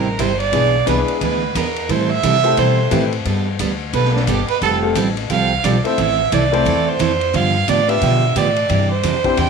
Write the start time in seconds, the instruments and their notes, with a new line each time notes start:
Already playing: upright bass A1, fiddle A#4
0.19 upright bass G1, steel-string acoustic guitar C3 G3 C4 E4 G4, fiddle C5, kick, hi-hat pedal, ride
0.40 fiddle D5, ride
0.52 upright bass B1, steel-string acoustic guitar E3 B3 D4 G#4, upright piano G#3 B3 D4 E4 G#4, kick, ride
0.86 upright bass C2, steel-string acoustic guitar E3 B3 D4 G#4, upright piano G#3 B3 D4 E4 G#4, fiddle B4, kick, hi-hat pedal, ride
1.08 ride
1.21 upright bass D2, steel-string acoustic guitar E3 B3 D4 G#4, fiddle B4, kick, ride
1.55 upright bass E2, steel-string acoustic guitar E3 B3 D4 G#4, fiddle A#4, kick, hi-hat pedal, ride
1.76 ride
1.89 upright bass A2, steel-string acoustic guitar E3 G3 C4 E4 A4, fiddle C5, kick, ride
2.10 fiddle E5
2.23 upright bass C3, steel-string acoustic guitar E3 G3 C4 E4 A4, kick, hi-hat pedal, ride
2.43 upright piano A3 E4 G4 A4 C5, ride
2.57 upright bass B2, steel-string acoustic guitar E3 G3 C4 E4 A4, fiddle C5, kick, ride
2.90 upright bass A2, steel-string acoustic guitar E3 G3 C4 E4 A4, upright piano A3 C4 E4 G4 B4, kick, hi-hat pedal, ride
3.12 ride
3.25 upright bass G2, steel-string acoustic guitar G3 B3 D4 A4, kick, ride
3.59 upright bass D2, steel-string acoustic guitar G3 B3 D4 A4, kick, hi-hat pedal, ride
3.93 upright bass B1, steel-string acoustic guitar G3 B3 D4 A4, fiddle B4, kick, ride
4.05 snare
4.15 fiddle D4, snare
4.27 upright bass G1, steel-string acoustic guitar G3 B3 D4 A4, fiddle G4, kick, hi-hat pedal, ride
4.48 fiddle B4, muted upright bass stroke, ride
4.61 upright bass F1, steel-string acoustic guitar F3 G3 C4 G4 A4, fiddle A4, kick, ride
4.82 upright piano A3 C4 F4 G4 A4
4.95 upright bass A1, steel-string acoustic guitar F3 G3 C4 G4 A4, kick, hi-hat pedal, ride
5.17 ride
5.30 upright bass C2, steel-string acoustic guitar F3 G3 C4 G4 A4, fiddle F5, kick, ride
5.64 upright bass B1, steel-string acoustic guitar F3 G3 C4 G4 A4, fiddle D5, kick, hi-hat pedal, ride
5.84 upright piano A3 C4 E4 A4 C5, fiddle E5, ride
5.98 upright bass A1, steel-string acoustic guitar E3 A3 C4 E4 A4, kick, ride
6.32 upright bass C2, steel-string acoustic guitar E3 A3 C4 E4 A4, fiddle D5, kick, hi-hat pedal, ride
6.52 upright piano A3 C4 E4 A4 C5, ride
6.65 upright bass E2, steel-string acoustic guitar E3 A3 C4 E4 A4, kick, ride
6.88 fiddle C5
6.99 upright bass F2, steel-string acoustic guitar E3 A3 C4 E4 A4, kick, hi-hat pedal, ride
7.21 ride
7.33 upright bass G2, steel-string acoustic guitar D3 F3 B3 D4 G4, fiddle F5, kick, ride
7.68 upright bass A2, steel-string acoustic guitar D3 F3 B3 D4 G4, fiddle D5, kick, hi-hat pedal, ride
7.88 upright piano B3 D4 F4 G4 B4, fiddle E5, ride
8.01 upright bass B2, steel-string acoustic guitar D3 F3 B3 D4 G4, kick, ride
8.36 upright bass A2, steel-string acoustic guitar D3 F3 B3 D4 G4, fiddle D5, kick, hi-hat pedal, ride
8.56 ride
8.69 upright bass G2, steel-string acoustic guitar C3 E3 D4 G4, kick, ride
8.91 fiddle C5
9.03 upright bass F2, steel-string acoustic guitar C3 E3 D4 G4, kick, hi-hat pedal, ride
9.24 upright piano C4 D4 E4 G4 C5, kick, ride
9.37 upright bass E2, steel-string acoustic guitar C3 E3 D4 G4, fiddle G5, kick, ride